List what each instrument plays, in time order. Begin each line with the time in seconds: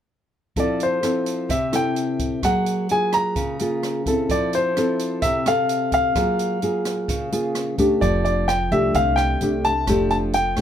0.56 nylon-string guitar F3 C4 E4 A4, grand piano D5, kick, closed hi-hat
0.80 grand piano C5, closed hi-hat
1.03 nylon-string guitar C4 E4 A4, cross-stick, closed hi-hat
1.26 closed hi-hat
1.49 nylon-string guitar C3, grand piano E5, kick, closed hi-hat
1.72 nylon-string guitar C4 E4 A4, grand piano G5, cross-stick, closed hi-hat
1.96 closed hi-hat
2.19 kick, closed hi-hat
2.43 nylon-string guitar F#3 A#3 G#4, grand piano F#5, kick, cross-stick, closed hi-hat
2.66 closed hi-hat
2.89 nylon-string guitar A#3 F4 G#4, grand piano G#5, closed hi-hat
3.12 grand piano A#5, cross-stick, closed hi-hat
3.36 nylon-string guitar C#3, kick, closed hi-hat
3.59 nylon-string guitar A#3 F4 G#4, closed hi-hat
3.83 cross-stick, closed hi-hat
4.06 nylon-string guitar C4 E4 A4, kick, closed hi-hat
4.29 nylon-string guitar F3, grand piano D5, kick, closed hi-hat
4.53 grand piano C5, closed hi-hat
4.77 nylon-string guitar C4 E4 A4, cross-stick, closed hi-hat
4.99 closed hi-hat
5.22 nylon-string guitar C3, grand piano E5, kick, closed hi-hat
5.46 nylon-string guitar C4 A4, grand piano F5, cross-stick, closed hi-hat
5.69 closed hi-hat
5.92 grand piano F5, kick, closed hi-hat
6.15 nylon-string guitar F#3 A#3 F4 G#4, kick, cross-stick, closed hi-hat
6.39 closed hi-hat
6.62 nylon-string guitar A#3 F4 G#4, closed hi-hat
6.85 cross-stick, closed hi-hat
7.08 nylon-string guitar C#3, kick, closed hi-hat
7.32 nylon-string guitar A#3 F4 G#4, closed hi-hat
7.55 cross-stick, closed hi-hat
7.78 nylon-string guitar A3 D4 G4, kick, closed hi-hat
8.01 upright bass F1, nylon-string guitar F3, grand piano D5, kick, closed hi-hat
8.25 grand piano D5, closed hi-hat
8.48 grand piano G5, cross-stick, closed hi-hat
8.72 upright bass C2, nylon-string guitar A3 D4 G4, grand piano E5, closed hi-hat
8.94 upright bass C2, nylon-string guitar C3, grand piano F5, kick, closed hi-hat
9.16 grand piano G5, cross-stick, closed hi-hat
9.41 upright bass C2, nylon-string guitar A3 D4 G4, closed hi-hat
9.64 grand piano A5, closed hi-hat
9.87 upright bass F1, nylon-string guitar F3 A3 D4 G4, kick, cross-stick, closed hi-hat
10.10 grand piano A5, closed hi-hat
10.33 grand piano G5, closed hi-hat
10.56 upright bass C2, nylon-string guitar A3, cross-stick, closed hi-hat